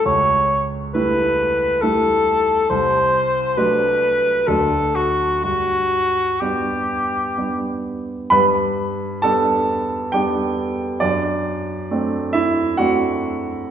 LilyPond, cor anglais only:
\new Staff \with { instrumentName = "Cor anglais" } { \time 3/4 \key g \major \tempo 4 = 67 cis''8 r8 b'4 a'4 | c''4 b'4 a'8 fis'8 | fis'4 g'4. r8 | r2. |
r2. | }